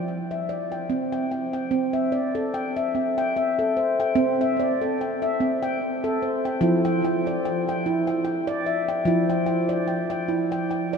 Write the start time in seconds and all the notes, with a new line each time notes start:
Already playing: F3 D5 G5
0.31 E5
0.49 D5
0.72 G5
0.90 C4
1.12 G5
1.31 G5
1.53 G5
1.71 C4
1.93 E5
2.12 D5
2.35 A4
2.54 G5
2.76 E5
2.95 C4
3.18 G5
3.37 E5
3.59 A4
3.77 C5
4.00 G5
4.15 C4
4.41 E5
4.60 D5
4.82 A4
5.01 G5
5.22 E5
5.40 C4
5.63 G5
6.04 A4
6.22 C5
6.45 G5
6.61 F3 E4
6.85 G5
7.05 G5
7.27 D5
7.45 G5
7.69 G5
7.86 E4
8.07 G5
8.25 G5
8.47 D5
8.66 E5
8.88 G5
9.05 F3 E4
9.30 G5
9.46 G5
9.69 D5
9.88 G5
10.10 G5
10.28 E4
10.52 G5
10.71 G5
10.93 D5